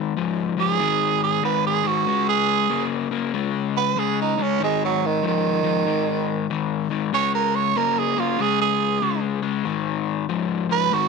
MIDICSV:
0, 0, Header, 1, 3, 480
1, 0, Start_track
1, 0, Tempo, 632911
1, 1571, Time_signature, 4, 2, 24, 8
1, 8405, End_track
2, 0, Start_track
2, 0, Title_t, "Tenor saxophone"
2, 0, Program_c, 0, 66
2, 456, Note_on_c, 0, 68, 100
2, 919, Note_off_c, 0, 68, 0
2, 939, Note_on_c, 0, 68, 91
2, 1090, Note_off_c, 0, 68, 0
2, 1098, Note_on_c, 0, 71, 81
2, 1250, Note_off_c, 0, 71, 0
2, 1267, Note_on_c, 0, 68, 90
2, 1420, Note_on_c, 0, 66, 97
2, 1432, Note_off_c, 0, 68, 0
2, 1726, Note_off_c, 0, 66, 0
2, 1737, Note_on_c, 0, 68, 114
2, 2200, Note_off_c, 0, 68, 0
2, 2861, Note_on_c, 0, 71, 90
2, 3024, Note_on_c, 0, 68, 80
2, 3035, Note_off_c, 0, 71, 0
2, 3173, Note_off_c, 0, 68, 0
2, 3198, Note_on_c, 0, 63, 81
2, 3356, Note_on_c, 0, 61, 84
2, 3367, Note_off_c, 0, 63, 0
2, 3499, Note_off_c, 0, 61, 0
2, 3516, Note_on_c, 0, 56, 92
2, 3659, Note_off_c, 0, 56, 0
2, 3675, Note_on_c, 0, 54, 87
2, 3836, Note_on_c, 0, 51, 98
2, 3847, Note_off_c, 0, 54, 0
2, 3979, Note_off_c, 0, 51, 0
2, 3999, Note_on_c, 0, 51, 101
2, 4917, Note_off_c, 0, 51, 0
2, 5419, Note_on_c, 0, 73, 107
2, 5568, Note_off_c, 0, 73, 0
2, 5573, Note_on_c, 0, 70, 86
2, 5728, Note_on_c, 0, 73, 97
2, 5740, Note_off_c, 0, 70, 0
2, 5894, Note_on_c, 0, 70, 84
2, 5906, Note_off_c, 0, 73, 0
2, 6056, Note_on_c, 0, 68, 85
2, 6067, Note_off_c, 0, 70, 0
2, 6215, Note_on_c, 0, 65, 82
2, 6227, Note_off_c, 0, 68, 0
2, 6379, Note_on_c, 0, 68, 96
2, 6391, Note_off_c, 0, 65, 0
2, 6528, Note_off_c, 0, 68, 0
2, 6533, Note_on_c, 0, 68, 96
2, 6997, Note_off_c, 0, 68, 0
2, 8126, Note_on_c, 0, 71, 106
2, 8295, Note_on_c, 0, 66, 95
2, 8307, Note_off_c, 0, 71, 0
2, 8405, Note_off_c, 0, 66, 0
2, 8405, End_track
3, 0, Start_track
3, 0, Title_t, "Overdriven electric guitar"
3, 0, Program_c, 1, 29
3, 0, Note_on_c, 1, 44, 74
3, 0, Note_on_c, 1, 51, 92
3, 95, Note_off_c, 1, 44, 0
3, 96, Note_off_c, 1, 51, 0
3, 127, Note_on_c, 1, 44, 70
3, 130, Note_on_c, 1, 53, 80
3, 405, Note_off_c, 1, 44, 0
3, 407, Note_off_c, 1, 53, 0
3, 431, Note_on_c, 1, 44, 69
3, 438, Note_on_c, 1, 53, 86
3, 589, Note_off_c, 1, 44, 0
3, 593, Note_off_c, 1, 53, 0
3, 605, Note_on_c, 1, 44, 87
3, 610, Note_on_c, 1, 51, 114
3, 1053, Note_off_c, 1, 44, 0
3, 1056, Note_off_c, 1, 51, 0
3, 1084, Note_on_c, 1, 44, 80
3, 1089, Note_on_c, 1, 51, 83
3, 1364, Note_off_c, 1, 44, 0
3, 1367, Note_off_c, 1, 51, 0
3, 1392, Note_on_c, 1, 44, 77
3, 1393, Note_on_c, 1, 51, 78
3, 1550, Note_off_c, 1, 44, 0
3, 1551, Note_off_c, 1, 51, 0
3, 1567, Note_on_c, 1, 49, 70
3, 1571, Note_on_c, 1, 56, 99
3, 2014, Note_off_c, 1, 49, 0
3, 2016, Note_off_c, 1, 56, 0
3, 2046, Note_on_c, 1, 49, 78
3, 2049, Note_on_c, 1, 58, 90
3, 2325, Note_off_c, 1, 49, 0
3, 2327, Note_off_c, 1, 58, 0
3, 2360, Note_on_c, 1, 49, 67
3, 2365, Note_on_c, 1, 58, 82
3, 2514, Note_off_c, 1, 49, 0
3, 2517, Note_off_c, 1, 58, 0
3, 2530, Note_on_c, 1, 49, 97
3, 2536, Note_on_c, 1, 56, 99
3, 2976, Note_off_c, 1, 49, 0
3, 2979, Note_off_c, 1, 56, 0
3, 3005, Note_on_c, 1, 49, 75
3, 3006, Note_on_c, 1, 56, 85
3, 3285, Note_off_c, 1, 49, 0
3, 3285, Note_off_c, 1, 56, 0
3, 3318, Note_on_c, 1, 49, 75
3, 3326, Note_on_c, 1, 56, 95
3, 3474, Note_off_c, 1, 49, 0
3, 3478, Note_off_c, 1, 56, 0
3, 3483, Note_on_c, 1, 44, 74
3, 3487, Note_on_c, 1, 51, 93
3, 3933, Note_off_c, 1, 44, 0
3, 3935, Note_off_c, 1, 51, 0
3, 3965, Note_on_c, 1, 44, 70
3, 3968, Note_on_c, 1, 53, 82
3, 4245, Note_off_c, 1, 44, 0
3, 4246, Note_off_c, 1, 53, 0
3, 4273, Note_on_c, 1, 44, 69
3, 4279, Note_on_c, 1, 53, 80
3, 4431, Note_off_c, 1, 44, 0
3, 4434, Note_off_c, 1, 53, 0
3, 4449, Note_on_c, 1, 44, 87
3, 4452, Note_on_c, 1, 51, 94
3, 4895, Note_off_c, 1, 44, 0
3, 4897, Note_off_c, 1, 51, 0
3, 4931, Note_on_c, 1, 44, 67
3, 4937, Note_on_c, 1, 51, 81
3, 5208, Note_off_c, 1, 44, 0
3, 5211, Note_off_c, 1, 51, 0
3, 5235, Note_on_c, 1, 44, 73
3, 5240, Note_on_c, 1, 51, 85
3, 5392, Note_off_c, 1, 44, 0
3, 5394, Note_off_c, 1, 51, 0
3, 5404, Note_on_c, 1, 49, 80
3, 5409, Note_on_c, 1, 56, 87
3, 5853, Note_off_c, 1, 49, 0
3, 5855, Note_off_c, 1, 56, 0
3, 5883, Note_on_c, 1, 49, 84
3, 5888, Note_on_c, 1, 58, 91
3, 6164, Note_off_c, 1, 49, 0
3, 6166, Note_off_c, 1, 58, 0
3, 6194, Note_on_c, 1, 49, 66
3, 6196, Note_on_c, 1, 58, 80
3, 6351, Note_off_c, 1, 49, 0
3, 6352, Note_off_c, 1, 58, 0
3, 6361, Note_on_c, 1, 49, 96
3, 6365, Note_on_c, 1, 56, 95
3, 6811, Note_off_c, 1, 49, 0
3, 6813, Note_off_c, 1, 56, 0
3, 6840, Note_on_c, 1, 49, 80
3, 6843, Note_on_c, 1, 56, 87
3, 7122, Note_off_c, 1, 49, 0
3, 7123, Note_off_c, 1, 56, 0
3, 7146, Note_on_c, 1, 49, 70
3, 7151, Note_on_c, 1, 56, 80
3, 7307, Note_off_c, 1, 49, 0
3, 7309, Note_off_c, 1, 56, 0
3, 7315, Note_on_c, 1, 44, 74
3, 7320, Note_on_c, 1, 51, 95
3, 7767, Note_off_c, 1, 44, 0
3, 7770, Note_off_c, 1, 51, 0
3, 7804, Note_on_c, 1, 44, 79
3, 7805, Note_on_c, 1, 53, 95
3, 8083, Note_off_c, 1, 44, 0
3, 8084, Note_off_c, 1, 53, 0
3, 8110, Note_on_c, 1, 44, 75
3, 8113, Note_on_c, 1, 53, 74
3, 8268, Note_off_c, 1, 44, 0
3, 8270, Note_off_c, 1, 53, 0
3, 8281, Note_on_c, 1, 44, 94
3, 8288, Note_on_c, 1, 51, 103
3, 8405, Note_off_c, 1, 44, 0
3, 8405, Note_off_c, 1, 51, 0
3, 8405, End_track
0, 0, End_of_file